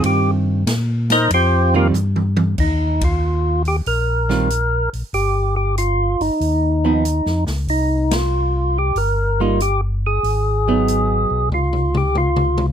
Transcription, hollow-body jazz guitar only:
X:1
M:4/4
L:1/8
Q:"Swing" 1/4=94
K:Eb
V:1 name="Hollow-body jazz guitar"
[E,CF]2 z3 [E,G,CF] z2 | z4 z [E,G,CF] z2 | z4 z [F,=B,^D] z2 | z4 z [G,B,E] z2 |
z [_G,_CE]3 z4 |]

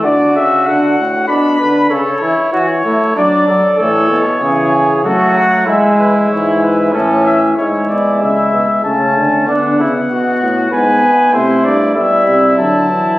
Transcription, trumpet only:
X:1
M:3/4
L:1/8
Q:1/4=96
K:Edor
V:1 name="Trumpet"
F4 D B | A E F E D A | A z ^G2 F2 | E4 C2 |
E4 C2 | D E F2 B2 | [K:Clyd] E2 E4 |]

